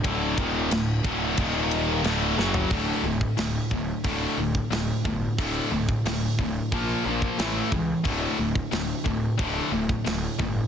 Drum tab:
RD |x-x-x-x-x-x-x---|----------------|----------------|----------------|
HH |----------------|o---o---o---o---|o---o---o---o---|o---o---o---o---|
SD |----o-------o-o-|----o-------o---|----o-------o---|----o-------o---|
FT |---------------o|----------------|----------------|----------------|
BD |o-o---o-o-------|o--o--o-o--o--o-|o--o--o-o--o--o-|o--o--o-o--o--o-|